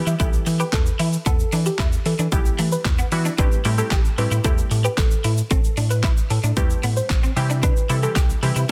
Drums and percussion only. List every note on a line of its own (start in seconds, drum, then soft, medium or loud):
0.07 shaker medium
0.20 kick loud
0.20 closed hi-hat medium
0.20 shaker medium
0.33 shaker medium
0.46 open hi-hat medium
0.46 shaker medium
0.60 shaker medium
0.73 kick loud
0.73 snare medium
0.73 clap loud
0.73 closed hi-hat medium
0.73 shaker medium
0.86 shaker medium
0.86 shaker soft
0.99 open hi-hat medium
0.99 shaker medium
1.13 shaker medium
1.26 kick loud
1.26 closed hi-hat medium
1.26 shaker medium
1.39 shaker medium
1.52 open hi-hat medium
1.52 shaker medium
1.66 shaker medium
1.78 kick loud
1.78 snare medium
1.78 clap loud
1.78 closed hi-hat medium
1.78 shaker medium
1.92 shaker medium
2.06 open hi-hat medium
2.06 shaker medium
2.19 shaker medium
2.32 kick loud
2.32 closed hi-hat medium
2.32 shaker medium
2.45 shaker medium
2.59 open hi-hat medium
2.59 shaker medium
2.72 shaker medium
2.85 kick loud
2.85 snare medium
2.85 clap loud
2.85 closed hi-hat medium
2.85 shaker medium
2.98 shaker medium
3.12 open hi-hat medium
3.12 shaker medium
3.25 shaker medium
3.38 kick loud
3.38 closed hi-hat medium
3.38 shaker medium
3.52 shaker soft
3.52 shaker medium
3.65 open hi-hat medium
3.65 shaker medium
3.78 shaker medium
3.91 kick loud
3.91 snare medium
3.91 clap loud
3.91 closed hi-hat medium
3.91 shaker medium
4.05 shaker medium
4.18 open hi-hat medium
4.18 shaker soft
4.31 shaker medium
4.44 kick loud
4.44 closed hi-hat medium
4.44 shaker medium
4.58 shaker medium
4.71 open hi-hat medium
4.71 shaker medium
4.85 shaker medium
4.97 kick loud
4.97 snare medium
4.97 clap loud
4.97 closed hi-hat medium
4.97 shaker medium
5.11 shaker medium
5.24 open hi-hat medium
5.24 shaker medium
5.37 shaker medium
5.51 kick loud
5.51 closed hi-hat medium
5.51 shaker medium
5.64 shaker medium
5.77 open hi-hat medium
5.77 shaker medium
5.90 shaker medium
6.03 kick loud
6.03 snare medium
6.03 clap loud
6.03 closed hi-hat medium
6.03 shaker medium
6.17 shaker medium
6.30 open hi-hat medium
6.30 shaker medium
6.44 shaker medium
6.57 kick loud
6.57 closed hi-hat medium
6.57 shaker medium
6.70 shaker medium
6.83 open hi-hat medium
6.83 shaker medium
6.97 shaker medium
7.10 kick loud
7.10 snare medium
7.10 clap loud
7.10 closed hi-hat medium
7.10 shaker medium
7.23 shaker medium
7.37 open hi-hat medium
7.37 shaker medium
7.50 shaker medium
7.63 kick loud
7.63 closed hi-hat medium
7.63 shaker medium
7.76 shaker medium
7.90 open hi-hat medium
7.90 shaker medium
7.90 shaker soft
8.03 shaker medium
8.16 kick loud
8.16 snare medium
8.16 clap loud
8.16 closed hi-hat medium
8.16 shaker medium
8.30 shaker medium
8.43 open hi-hat medium
8.43 shaker medium
8.56 shaker medium